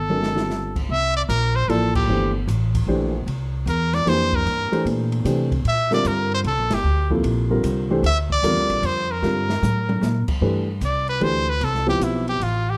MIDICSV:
0, 0, Header, 1, 6, 480
1, 0, Start_track
1, 0, Tempo, 397088
1, 1083, Time_signature, 3, 2, 24, 8
1, 15440, End_track
2, 0, Start_track
2, 0, Title_t, "Trumpet"
2, 0, Program_c, 0, 56
2, 0, Note_on_c, 0, 69, 76
2, 923, Note_off_c, 0, 69, 0
2, 1097, Note_on_c, 0, 76, 104
2, 1384, Note_off_c, 0, 76, 0
2, 1410, Note_on_c, 0, 74, 88
2, 1481, Note_off_c, 0, 74, 0
2, 1562, Note_on_c, 0, 70, 98
2, 1883, Note_on_c, 0, 72, 87
2, 1901, Note_off_c, 0, 70, 0
2, 2045, Note_on_c, 0, 69, 86
2, 2063, Note_off_c, 0, 72, 0
2, 2359, Note_off_c, 0, 69, 0
2, 2369, Note_on_c, 0, 67, 75
2, 2810, Note_off_c, 0, 67, 0
2, 4462, Note_on_c, 0, 70, 89
2, 4768, Note_on_c, 0, 74, 101
2, 4786, Note_off_c, 0, 70, 0
2, 4941, Note_on_c, 0, 72, 101
2, 4959, Note_off_c, 0, 74, 0
2, 5263, Note_on_c, 0, 70, 87
2, 5281, Note_off_c, 0, 72, 0
2, 5893, Note_off_c, 0, 70, 0
2, 6871, Note_on_c, 0, 76, 95
2, 7150, Note_off_c, 0, 76, 0
2, 7181, Note_on_c, 0, 74, 89
2, 7340, Note_on_c, 0, 70, 84
2, 7358, Note_off_c, 0, 74, 0
2, 7645, Note_off_c, 0, 70, 0
2, 7666, Note_on_c, 0, 72, 87
2, 7733, Note_off_c, 0, 72, 0
2, 7825, Note_on_c, 0, 69, 90
2, 8148, Note_on_c, 0, 67, 81
2, 8166, Note_off_c, 0, 69, 0
2, 8611, Note_off_c, 0, 67, 0
2, 9747, Note_on_c, 0, 76, 106
2, 9883, Note_off_c, 0, 76, 0
2, 10060, Note_on_c, 0, 74, 108
2, 10707, Note_on_c, 0, 72, 92
2, 10725, Note_off_c, 0, 74, 0
2, 11017, Note_on_c, 0, 70, 83
2, 11035, Note_off_c, 0, 72, 0
2, 12447, Note_off_c, 0, 70, 0
2, 13113, Note_on_c, 0, 74, 79
2, 13392, Note_off_c, 0, 74, 0
2, 13408, Note_on_c, 0, 71, 87
2, 13582, Note_on_c, 0, 72, 90
2, 13600, Note_off_c, 0, 71, 0
2, 13893, Note_on_c, 0, 71, 86
2, 13911, Note_off_c, 0, 72, 0
2, 14071, Note_on_c, 0, 69, 78
2, 14089, Note_off_c, 0, 71, 0
2, 14369, Note_off_c, 0, 69, 0
2, 14376, Note_on_c, 0, 67, 92
2, 14550, Note_on_c, 0, 64, 63
2, 14568, Note_off_c, 0, 67, 0
2, 14848, Note_off_c, 0, 64, 0
2, 14856, Note_on_c, 0, 67, 87
2, 15027, Note_on_c, 0, 65, 77
2, 15045, Note_off_c, 0, 67, 0
2, 15348, Note_on_c, 0, 67, 81
2, 15366, Note_off_c, 0, 65, 0
2, 15440, Note_off_c, 0, 67, 0
2, 15440, End_track
3, 0, Start_track
3, 0, Title_t, "Upright piano"
3, 0, Program_c, 1, 0
3, 119, Note_on_c, 1, 51, 47
3, 120, Note_on_c, 1, 56, 44
3, 121, Note_on_c, 1, 66, 45
3, 121, Note_on_c, 1, 70, 54
3, 122, Note_on_c, 1, 61, 39
3, 405, Note_off_c, 1, 51, 0
3, 406, Note_off_c, 1, 56, 0
3, 406, Note_off_c, 1, 66, 0
3, 406, Note_off_c, 1, 70, 0
3, 407, Note_off_c, 1, 61, 0
3, 422, Note_on_c, 1, 50, 47
3, 427, Note_on_c, 1, 60, 42
3, 427, Note_on_c, 1, 65, 42
3, 428, Note_on_c, 1, 55, 42
3, 433, Note_on_c, 1, 69, 50
3, 847, Note_off_c, 1, 50, 0
3, 850, Note_off_c, 1, 55, 0
3, 850, Note_off_c, 1, 60, 0
3, 850, Note_off_c, 1, 65, 0
3, 853, Note_off_c, 1, 69, 0
3, 2048, Note_on_c, 1, 53, 73
3, 2048, Note_on_c, 1, 58, 69
3, 2049, Note_on_c, 1, 64, 59
3, 2052, Note_on_c, 1, 74, 75
3, 2055, Note_on_c, 1, 69, 66
3, 2527, Note_on_c, 1, 52, 57
3, 2531, Note_on_c, 1, 67, 57
3, 2532, Note_on_c, 1, 57, 53
3, 2532, Note_on_c, 1, 62, 57
3, 2538, Note_on_c, 1, 72, 72
3, 2777, Note_off_c, 1, 53, 0
3, 2777, Note_off_c, 1, 58, 0
3, 2778, Note_off_c, 1, 64, 0
3, 2779, Note_off_c, 1, 74, 0
3, 2781, Note_off_c, 1, 69, 0
3, 2809, Note_off_c, 1, 52, 0
3, 2811, Note_off_c, 1, 57, 0
3, 2811, Note_off_c, 1, 62, 0
3, 2811, Note_off_c, 1, 67, 0
3, 2814, Note_off_c, 1, 72, 0
3, 3482, Note_on_c, 1, 52, 66
3, 3485, Note_on_c, 1, 72, 81
3, 3486, Note_on_c, 1, 57, 61
3, 3486, Note_on_c, 1, 62, 69
3, 3487, Note_on_c, 1, 67, 66
3, 3766, Note_off_c, 1, 52, 0
3, 3767, Note_off_c, 1, 72, 0
3, 3768, Note_off_c, 1, 57, 0
3, 3768, Note_off_c, 1, 62, 0
3, 3768, Note_off_c, 1, 67, 0
3, 4911, Note_on_c, 1, 58, 63
3, 4913, Note_on_c, 1, 62, 62
3, 4915, Note_on_c, 1, 52, 70
3, 4917, Note_on_c, 1, 72, 75
3, 4919, Note_on_c, 1, 67, 61
3, 5648, Note_off_c, 1, 58, 0
3, 5649, Note_off_c, 1, 62, 0
3, 5650, Note_off_c, 1, 52, 0
3, 5651, Note_off_c, 1, 72, 0
3, 5652, Note_off_c, 1, 67, 0
3, 5705, Note_on_c, 1, 52, 68
3, 5707, Note_on_c, 1, 57, 58
3, 5707, Note_on_c, 1, 62, 58
3, 5709, Note_on_c, 1, 67, 65
3, 5713, Note_on_c, 1, 72, 80
3, 6322, Note_off_c, 1, 52, 0
3, 6323, Note_off_c, 1, 57, 0
3, 6323, Note_off_c, 1, 62, 0
3, 6323, Note_off_c, 1, 67, 0
3, 6326, Note_off_c, 1, 72, 0
3, 6345, Note_on_c, 1, 52, 67
3, 6346, Note_on_c, 1, 57, 57
3, 6351, Note_on_c, 1, 62, 61
3, 6351, Note_on_c, 1, 67, 64
3, 6354, Note_on_c, 1, 72, 75
3, 6636, Note_off_c, 1, 52, 0
3, 6637, Note_off_c, 1, 57, 0
3, 6639, Note_off_c, 1, 62, 0
3, 6639, Note_off_c, 1, 67, 0
3, 6641, Note_off_c, 1, 72, 0
3, 7146, Note_on_c, 1, 50, 72
3, 7148, Note_on_c, 1, 60, 66
3, 7151, Note_on_c, 1, 55, 68
3, 7153, Note_on_c, 1, 65, 73
3, 7155, Note_on_c, 1, 70, 80
3, 7762, Note_off_c, 1, 50, 0
3, 7763, Note_off_c, 1, 60, 0
3, 7764, Note_off_c, 1, 55, 0
3, 7765, Note_off_c, 1, 65, 0
3, 7766, Note_off_c, 1, 70, 0
3, 8586, Note_on_c, 1, 48, 68
3, 8588, Note_on_c, 1, 53, 69
3, 8590, Note_on_c, 1, 58, 62
3, 8597, Note_on_c, 1, 64, 64
3, 8598, Note_on_c, 1, 69, 78
3, 9039, Note_off_c, 1, 48, 0
3, 9040, Note_off_c, 1, 53, 0
3, 9041, Note_off_c, 1, 58, 0
3, 9044, Note_off_c, 1, 64, 0
3, 9044, Note_off_c, 1, 69, 0
3, 9064, Note_on_c, 1, 50, 68
3, 9068, Note_on_c, 1, 55, 64
3, 9070, Note_on_c, 1, 60, 66
3, 9071, Note_on_c, 1, 65, 61
3, 9074, Note_on_c, 1, 70, 76
3, 9518, Note_off_c, 1, 50, 0
3, 9520, Note_off_c, 1, 55, 0
3, 9521, Note_off_c, 1, 60, 0
3, 9521, Note_off_c, 1, 65, 0
3, 9523, Note_off_c, 1, 70, 0
3, 9552, Note_on_c, 1, 52, 77
3, 9554, Note_on_c, 1, 62, 68
3, 9555, Note_on_c, 1, 57, 68
3, 9557, Note_on_c, 1, 67, 76
3, 9560, Note_on_c, 1, 72, 88
3, 9701, Note_off_c, 1, 52, 0
3, 9702, Note_off_c, 1, 57, 0
3, 9702, Note_off_c, 1, 62, 0
3, 9704, Note_off_c, 1, 67, 0
3, 9705, Note_off_c, 1, 72, 0
3, 10194, Note_on_c, 1, 50, 70
3, 10196, Note_on_c, 1, 55, 66
3, 10197, Note_on_c, 1, 60, 64
3, 10198, Note_on_c, 1, 65, 67
3, 10200, Note_on_c, 1, 70, 78
3, 10929, Note_off_c, 1, 50, 0
3, 10930, Note_off_c, 1, 55, 0
3, 10931, Note_off_c, 1, 60, 0
3, 10931, Note_off_c, 1, 65, 0
3, 10932, Note_off_c, 1, 70, 0
3, 11152, Note_on_c, 1, 50, 53
3, 11152, Note_on_c, 1, 55, 53
3, 11156, Note_on_c, 1, 60, 52
3, 11157, Note_on_c, 1, 65, 54
3, 11160, Note_on_c, 1, 70, 70
3, 11440, Note_off_c, 1, 50, 0
3, 11440, Note_off_c, 1, 55, 0
3, 11441, Note_off_c, 1, 60, 0
3, 11442, Note_off_c, 1, 65, 0
3, 11444, Note_off_c, 1, 70, 0
3, 12590, Note_on_c, 1, 52, 64
3, 12591, Note_on_c, 1, 67, 58
3, 12592, Note_on_c, 1, 62, 60
3, 12594, Note_on_c, 1, 57, 61
3, 12597, Note_on_c, 1, 71, 69
3, 12879, Note_off_c, 1, 52, 0
3, 12880, Note_off_c, 1, 67, 0
3, 12881, Note_off_c, 1, 57, 0
3, 12881, Note_off_c, 1, 62, 0
3, 12883, Note_off_c, 1, 71, 0
3, 13543, Note_on_c, 1, 52, 66
3, 13547, Note_on_c, 1, 57, 60
3, 13547, Note_on_c, 1, 62, 57
3, 13551, Note_on_c, 1, 67, 60
3, 13551, Note_on_c, 1, 71, 72
3, 13837, Note_off_c, 1, 52, 0
3, 13838, Note_off_c, 1, 57, 0
3, 13839, Note_off_c, 1, 62, 0
3, 13840, Note_off_c, 1, 71, 0
3, 13841, Note_off_c, 1, 67, 0
3, 14340, Note_on_c, 1, 60, 71
3, 14343, Note_on_c, 1, 59, 62
3, 14344, Note_on_c, 1, 53, 65
3, 14347, Note_on_c, 1, 64, 70
3, 14348, Note_on_c, 1, 67, 71
3, 14961, Note_off_c, 1, 60, 0
3, 14963, Note_off_c, 1, 53, 0
3, 14963, Note_off_c, 1, 59, 0
3, 14965, Note_off_c, 1, 64, 0
3, 14966, Note_off_c, 1, 67, 0
3, 15440, End_track
4, 0, Start_track
4, 0, Title_t, "Upright bass"
4, 0, Program_c, 2, 32
4, 0, Note_on_c, 2, 31, 75
4, 1030, Note_off_c, 2, 31, 0
4, 1076, Note_on_c, 2, 36, 82
4, 1545, Note_off_c, 2, 36, 0
4, 1556, Note_on_c, 2, 34, 97
4, 2020, Note_off_c, 2, 34, 0
4, 2027, Note_on_c, 2, 33, 84
4, 2500, Note_off_c, 2, 33, 0
4, 2509, Note_on_c, 2, 31, 77
4, 2981, Note_off_c, 2, 31, 0
4, 2991, Note_on_c, 2, 33, 101
4, 3457, Note_off_c, 2, 33, 0
4, 3465, Note_on_c, 2, 34, 88
4, 3936, Note_off_c, 2, 34, 0
4, 3943, Note_on_c, 2, 36, 82
4, 4412, Note_off_c, 2, 36, 0
4, 4420, Note_on_c, 2, 40, 92
4, 4895, Note_off_c, 2, 40, 0
4, 4902, Note_on_c, 2, 41, 84
4, 5373, Note_off_c, 2, 41, 0
4, 5381, Note_on_c, 2, 43, 84
4, 5683, Note_off_c, 2, 43, 0
4, 5863, Note_on_c, 2, 46, 91
4, 6334, Note_off_c, 2, 46, 0
4, 6341, Note_on_c, 2, 48, 90
4, 6815, Note_off_c, 2, 48, 0
4, 6825, Note_on_c, 2, 46, 78
4, 7297, Note_off_c, 2, 46, 0
4, 7309, Note_on_c, 2, 43, 85
4, 7780, Note_off_c, 2, 43, 0
4, 7786, Note_on_c, 2, 36, 87
4, 7949, Note_off_c, 2, 36, 0
4, 7949, Note_on_c, 2, 34, 58
4, 8104, Note_off_c, 2, 34, 0
4, 8111, Note_on_c, 2, 31, 67
4, 8259, Note_off_c, 2, 31, 0
4, 8266, Note_on_c, 2, 38, 84
4, 8738, Note_off_c, 2, 38, 0
4, 8744, Note_on_c, 2, 34, 94
4, 9217, Note_off_c, 2, 34, 0
4, 9225, Note_on_c, 2, 36, 90
4, 9697, Note_off_c, 2, 36, 0
4, 9702, Note_on_c, 2, 38, 89
4, 10176, Note_off_c, 2, 38, 0
4, 10187, Note_on_c, 2, 40, 99
4, 10352, Note_off_c, 2, 40, 0
4, 10352, Note_on_c, 2, 38, 56
4, 10496, Note_off_c, 2, 38, 0
4, 10504, Note_on_c, 2, 34, 69
4, 10660, Note_off_c, 2, 34, 0
4, 10666, Note_on_c, 2, 41, 90
4, 11138, Note_off_c, 2, 41, 0
4, 11150, Note_on_c, 2, 43, 86
4, 11620, Note_off_c, 2, 43, 0
4, 11632, Note_on_c, 2, 45, 99
4, 12097, Note_off_c, 2, 45, 0
4, 12104, Note_on_c, 2, 46, 88
4, 12405, Note_off_c, 2, 46, 0
4, 12584, Note_on_c, 2, 43, 77
4, 13055, Note_off_c, 2, 43, 0
4, 13062, Note_on_c, 2, 36, 84
4, 13537, Note_off_c, 2, 36, 0
4, 13549, Note_on_c, 2, 38, 83
4, 14021, Note_off_c, 2, 38, 0
4, 14029, Note_on_c, 2, 36, 86
4, 14496, Note_off_c, 2, 36, 0
4, 14503, Note_on_c, 2, 35, 90
4, 14979, Note_off_c, 2, 35, 0
4, 14990, Note_on_c, 2, 33, 88
4, 15440, Note_off_c, 2, 33, 0
4, 15440, End_track
5, 0, Start_track
5, 0, Title_t, "Muted upright bass strokes"
5, 5701, Note_on_c, 9, 29, 40
5, 5822, Note_off_c, 9, 29, 0
5, 12426, Note_on_c, 9, 29, 37
5, 12547, Note_off_c, 9, 29, 0
5, 15440, End_track
6, 0, Start_track
6, 0, Title_t, "Drums"
6, 117, Note_on_c, 9, 48, 52
6, 238, Note_off_c, 9, 48, 0
6, 278, Note_on_c, 9, 38, 60
6, 399, Note_off_c, 9, 38, 0
6, 444, Note_on_c, 9, 38, 68
6, 565, Note_off_c, 9, 38, 0
6, 603, Note_on_c, 9, 38, 46
6, 724, Note_off_c, 9, 38, 0
6, 916, Note_on_c, 9, 36, 63
6, 918, Note_on_c, 9, 49, 57
6, 1037, Note_off_c, 9, 36, 0
6, 1039, Note_off_c, 9, 49, 0
6, 1564, Note_on_c, 9, 44, 47
6, 1564, Note_on_c, 9, 51, 64
6, 1685, Note_off_c, 9, 44, 0
6, 1685, Note_off_c, 9, 51, 0
6, 2050, Note_on_c, 9, 51, 65
6, 2170, Note_off_c, 9, 51, 0
6, 2361, Note_on_c, 9, 36, 87
6, 2361, Note_on_c, 9, 49, 77
6, 2482, Note_off_c, 9, 36, 0
6, 2482, Note_off_c, 9, 49, 0
6, 3004, Note_on_c, 9, 44, 54
6, 3004, Note_on_c, 9, 51, 63
6, 3124, Note_off_c, 9, 44, 0
6, 3124, Note_off_c, 9, 51, 0
6, 3320, Note_on_c, 9, 36, 62
6, 3321, Note_on_c, 9, 51, 70
6, 3441, Note_off_c, 9, 36, 0
6, 3441, Note_off_c, 9, 51, 0
6, 3960, Note_on_c, 9, 51, 64
6, 4081, Note_off_c, 9, 51, 0
6, 4439, Note_on_c, 9, 44, 58
6, 4439, Note_on_c, 9, 51, 65
6, 4560, Note_off_c, 9, 44, 0
6, 4560, Note_off_c, 9, 51, 0
6, 4754, Note_on_c, 9, 38, 40
6, 4754, Note_on_c, 9, 51, 48
6, 4875, Note_off_c, 9, 38, 0
6, 4875, Note_off_c, 9, 51, 0
6, 4922, Note_on_c, 9, 38, 40
6, 4922, Note_on_c, 9, 51, 63
6, 5043, Note_off_c, 9, 38, 0
6, 5043, Note_off_c, 9, 51, 0
6, 5232, Note_on_c, 9, 36, 58
6, 5353, Note_off_c, 9, 36, 0
6, 5399, Note_on_c, 9, 51, 53
6, 5520, Note_off_c, 9, 51, 0
6, 5717, Note_on_c, 9, 51, 47
6, 5838, Note_off_c, 9, 51, 0
6, 5881, Note_on_c, 9, 51, 57
6, 6001, Note_off_c, 9, 51, 0
6, 6191, Note_on_c, 9, 51, 50
6, 6312, Note_off_c, 9, 51, 0
6, 6351, Note_on_c, 9, 44, 54
6, 6351, Note_on_c, 9, 51, 67
6, 6472, Note_off_c, 9, 44, 0
6, 6472, Note_off_c, 9, 51, 0
6, 6668, Note_on_c, 9, 36, 69
6, 6672, Note_on_c, 9, 51, 48
6, 6789, Note_off_c, 9, 36, 0
6, 6793, Note_off_c, 9, 51, 0
6, 6830, Note_on_c, 9, 51, 61
6, 6950, Note_off_c, 9, 51, 0
6, 7143, Note_on_c, 9, 38, 58
6, 7264, Note_off_c, 9, 38, 0
6, 7309, Note_on_c, 9, 44, 67
6, 7309, Note_on_c, 9, 51, 63
6, 7430, Note_off_c, 9, 44, 0
6, 7430, Note_off_c, 9, 51, 0
6, 7789, Note_on_c, 9, 51, 65
6, 7910, Note_off_c, 9, 51, 0
6, 8105, Note_on_c, 9, 38, 81
6, 8105, Note_on_c, 9, 51, 66
6, 8226, Note_off_c, 9, 38, 0
6, 8226, Note_off_c, 9, 51, 0
6, 8587, Note_on_c, 9, 36, 50
6, 8708, Note_off_c, 9, 36, 0
6, 8751, Note_on_c, 9, 51, 66
6, 8872, Note_off_c, 9, 51, 0
6, 9232, Note_on_c, 9, 44, 53
6, 9232, Note_on_c, 9, 51, 69
6, 9352, Note_off_c, 9, 44, 0
6, 9352, Note_off_c, 9, 51, 0
6, 9718, Note_on_c, 9, 51, 67
6, 9839, Note_off_c, 9, 51, 0
6, 10031, Note_on_c, 9, 36, 64
6, 10152, Note_off_c, 9, 36, 0
6, 10199, Note_on_c, 9, 44, 55
6, 10199, Note_on_c, 9, 51, 72
6, 10320, Note_off_c, 9, 44, 0
6, 10320, Note_off_c, 9, 51, 0
6, 10513, Note_on_c, 9, 51, 52
6, 10634, Note_off_c, 9, 51, 0
6, 10675, Note_on_c, 9, 51, 69
6, 10796, Note_off_c, 9, 51, 0
6, 11153, Note_on_c, 9, 38, 46
6, 11274, Note_off_c, 9, 38, 0
6, 11477, Note_on_c, 9, 38, 74
6, 11598, Note_off_c, 9, 38, 0
6, 11642, Note_on_c, 9, 44, 67
6, 11642, Note_on_c, 9, 48, 69
6, 11763, Note_off_c, 9, 44, 0
6, 11763, Note_off_c, 9, 48, 0
6, 11956, Note_on_c, 9, 48, 83
6, 12077, Note_off_c, 9, 48, 0
6, 12117, Note_on_c, 9, 38, 59
6, 12117, Note_on_c, 9, 44, 55
6, 12238, Note_off_c, 9, 38, 0
6, 12238, Note_off_c, 9, 44, 0
6, 12425, Note_on_c, 9, 49, 80
6, 12430, Note_on_c, 9, 36, 82
6, 12546, Note_off_c, 9, 49, 0
6, 12551, Note_off_c, 9, 36, 0
6, 13070, Note_on_c, 9, 44, 49
6, 13070, Note_on_c, 9, 51, 62
6, 13191, Note_off_c, 9, 44, 0
6, 13191, Note_off_c, 9, 51, 0
6, 13390, Note_on_c, 9, 51, 41
6, 13511, Note_off_c, 9, 51, 0
6, 13551, Note_on_c, 9, 51, 53
6, 13672, Note_off_c, 9, 51, 0
6, 14035, Note_on_c, 9, 51, 65
6, 14156, Note_off_c, 9, 51, 0
6, 14199, Note_on_c, 9, 38, 29
6, 14320, Note_off_c, 9, 38, 0
6, 14362, Note_on_c, 9, 38, 40
6, 14483, Note_off_c, 9, 38, 0
6, 14521, Note_on_c, 9, 44, 53
6, 14521, Note_on_c, 9, 51, 67
6, 14642, Note_off_c, 9, 44, 0
6, 14642, Note_off_c, 9, 51, 0
6, 14840, Note_on_c, 9, 51, 45
6, 14961, Note_off_c, 9, 51, 0
6, 15005, Note_on_c, 9, 51, 65
6, 15126, Note_off_c, 9, 51, 0
6, 15440, End_track
0, 0, End_of_file